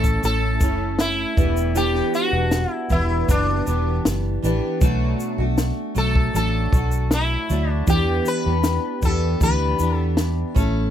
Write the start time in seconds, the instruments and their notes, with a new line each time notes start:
Already playing: fingered electric bass A1, steel-string acoustic guitar A3 C#4 E4 A4, sitar A4
0.04 kick, shaker
0.23 fingered electric bass A1, steel-string acoustic guitar A3 C#4 E4 A4, sitar A4, shaker
0.61 fingered electric bass F#1, steel-string acoustic guitar A3 C#4 E4 A4, kick, shaker
0.99 sitar E4, snare, shaker
1.36 fingered electric bass E1, steel-string acoustic guitar E3 B3 D4 G4, kick, shaker
1.57 shaker
1.75 steel-string acoustic guitar E3 B3 D4 G4, sitar G4, shaker
1.95 snare
2.14 sitar F#4, shaker
2.33 fingered electric bass E1, steel-string acoustic guitar B3 D4
2.51 snare, shaker
2.72 sitar E4
2.90 fingered electric bass E1, steel-string acoustic guitar E3 B3 D4 G4, sitar E4, kick, shaker
3.28 fingered electric bass F#1, steel-string acoustic guitar E3 B3 D4 G4, sitar D4, kick, shaker
3.65 fingered electric bass E1, steel-string acoustic guitar E3 B3 D4 G4, shaker
4.05 fingered electric bass F#1, snare, shaker
4.42 fingered electric bass A1, steel-string acoustic guitar E3 B3 D4 G4, shaker
4.81 fingered electric bass B1, steel-string acoustic guitar B2 F#3 A3 D4 F#4, kick, shaker
5.20 shaker
5.38 fingered electric bass B1, steel-string acoustic guitar A3 D4 F#4
5.58 snare, shaker
5.95 fingered electric bass B1, steel-string acoustic guitar F#3 A3 D4 F#4, sitar A4, shaker
6.15 kick
6.33 fingered electric bass A1, steel-string acoustic guitar F#3 A3 D4 F#4, sitar A4, shaker
6.72 fingered electric bass B1, steel-string acoustic guitar F#3 A3 D4 F#4, kick, shaker
6.92 shaker
7.11 sitar E4, snare, shaker
7.49 fingered electric bass D2, steel-string acoustic guitar F#3 A3 D4 F#4, shaker
7.71 sitar D4
7.87 fingered electric bass E2, steel-string acoustic guitar E3 B3 D4 G4, sitar G4, kick, shaker
8.26 sitar B4, shaker
8.45 fingered electric bass E2, steel-string acoustic guitar B3 D4 G4
8.64 snare, shaker
9.01 fingered electric bass E2, steel-string acoustic guitar E3 B3 D4 G4, sitar A4, kick, shaker
9.40 fingered electric bass D2, steel-string acoustic guitar E3 B3 D4 G4, sitar B4, kick, shaker
9.78 fingered electric bass E2, steel-string acoustic guitar E3 B3 D4 G4, shaker
9.96 sitar A4
10.17 snare, shaker
10.54 fingered electric bass A1, steel-string acoustic guitar A3 C#4 E4 A4, kick, shaker